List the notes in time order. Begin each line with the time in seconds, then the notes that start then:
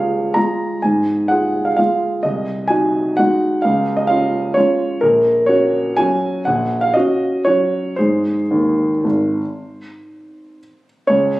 Already playing: C#2 F4 G#4 C#5 F5
0.34 G#3 F4 G#4 A#5
0.82 G#2 G#5
1.28 F4 G#4 F#5
1.65 F5
1.77 G#3 F4 G#4 F5
2.23 C2 D#5
2.68 D#4 F#4 G#5
3.17 G#3 D#4 F#4 F#5
3.62 C#2 F5
3.97 D#5
4.07 C#4 F4 F5
4.54 G#3 C#4 F4 C#5
5.01 A#1 A#4
5.46 C#4 F#4 C#5
5.97 F#3 C#4 F#4 G#5
6.45 A#1 F#5
6.81 F5
6.94 C#4 F#4 D#5
7.45 F#3 C#4 F#4 C#5
7.96 G#2 G#3 G#4 C5
8.51 D#2
9.04 G#1
11.07 C#2 C#5